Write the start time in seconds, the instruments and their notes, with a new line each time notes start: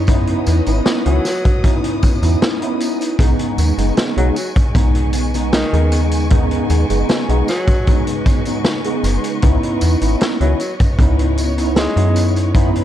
Already playing: fm bass F#2, string section B4 C#5 D#5
0.07 tine electric piano B3 C#4 D#4 E4, string section D#6, kick, closed hi-hat, tambourine
0.27 closed hi-hat
0.46 fm bass E2, closed hi-hat, tambourine
0.66 fm bass G#1, tine electric piano B3 C#4 D#4 E4, closed hi-hat, tambourine
0.86 snare, closed hi-hat, tambourine
1.05 fm bass C#2, tine electric piano D#3 B3 C#4 E4, tenor saxophone F#3, closed hi-hat
1.25 snare, closed hi-hat, tambourine
1.45 kick, closed hi-hat, tambourine
1.63 tine electric piano B3 C#4 D#4 E4, kick, closed hi-hat, tambourine
1.84 closed hi-hat
2.03 kick, closed hi-hat, tambourine
2.22 fm bass E2, tine electric piano B3 C#4 D#4 E4, closed hi-hat, tambourine
2.42 snare, closed hi-hat, tambourine
2.60 tine electric piano B3 C#4 D#4 E4, closed hi-hat
2.80 closed hi-hat, tambourine
3.01 closed hi-hat, tambourine
3.19 fm bass B1, tine electric piano C#3 G#3 B3 D#4, string section B4 D#5 G#5 C#6, kick, closed hi-hat, tambourine
3.39 closed hi-hat
3.58 fm bass D#2, closed hi-hat, tambourine
3.77 fm bass F#1, tine electric piano C#3 G#3 B3 D#4, closed hi-hat, tambourine
3.97 snare, closed hi-hat, tambourine
4.16 fm bass B1, tine electric piano C#3 G#3 B3 D#4, tenor saxophone F#3, closed hi-hat
4.36 tenor saxophone F#3, closed hi-hat, tambourine
4.56 kick, closed hi-hat, tambourine
4.74 fm bass B1, tine electric piano C#3 G#3 B3 D#4, kick, closed hi-hat, tambourine
4.95 closed hi-hat
5.13 closed hi-hat, tambourine
5.33 tine electric piano C#3 G#3 B3 D#4, closed hi-hat, tambourine
5.53 tenor saxophone D#3, snare, closed hi-hat, tambourine
5.72 fm bass D#2, tine electric piano C#3 G#3 B3 D#4, closed hi-hat
5.92 closed hi-hat, tambourine
6.11 closed hi-hat, tambourine
6.30 tine electric piano C#3 G#3 B3 D#4, kick, closed hi-hat
6.51 closed hi-hat
6.70 fm bass D#2, closed hi-hat, tambourine
6.89 fm bass F#1, tine electric piano C#3 G#3 B3 D#4, closed hi-hat, tambourine
7.09 snare, closed hi-hat, tambourine
7.28 fm bass B1, tine electric piano C#3 G#3 B3 D#4, closed hi-hat
7.48 tenor saxophone F#3, snare, closed hi-hat, tambourine
7.68 kick, closed hi-hat, tambourine
7.86 tine electric piano C#3 G#3 B3 D#4, kick, closed hi-hat, tambourine
8.07 closed hi-hat
8.26 kick, closed hi-hat, tambourine
8.45 tine electric piano C#3 G#3 B3 D#4, closed hi-hat, tambourine
8.64 snare, closed hi-hat, tambourine
8.84 tine electric piano C#3 G#3 B3 D#4, closed hi-hat
9.04 fm bass F#1, closed hi-hat, tambourine
9.24 closed hi-hat, tambourine
9.42 fm bass C#2, tine electric piano B3 C#4 D#4 E4, string section C#5, kick, closed hi-hat, tambourine
9.63 closed hi-hat
9.81 fm bass E2, closed hi-hat, tambourine
10.01 fm bass G#1, tine electric piano B3 C#4 D#4 E4, closed hi-hat, tambourine
10.21 snare, closed hi-hat, tambourine
10.40 fm bass C#2, tine electric piano D#3 B3 C#4 E4, tenor saxophone F#3, closed hi-hat
10.60 tenor saxophone F#3, closed hi-hat, tambourine
10.80 kick, closed hi-hat, tambourine
10.98 fm bass C#2, tine electric piano B3 C#4 D#4 E4, kick, closed hi-hat, tambourine
11.19 closed hi-hat
11.38 closed hi-hat, tambourine
11.57 tine electric piano B3 C#4 D#4 E4, closed hi-hat, tambourine
11.76 tenor saxophone G#3, snare, closed hi-hat, tambourine
11.96 fm bass F#2, tine electric piano B3 C#4 D#4 E4, closed hi-hat
12.16 closed hi-hat, tambourine
12.36 closed hi-hat, tambourine
12.54 tine electric piano B3 C#4 D#4 E4, string section B5, kick, closed hi-hat, tambourine
12.75 closed hi-hat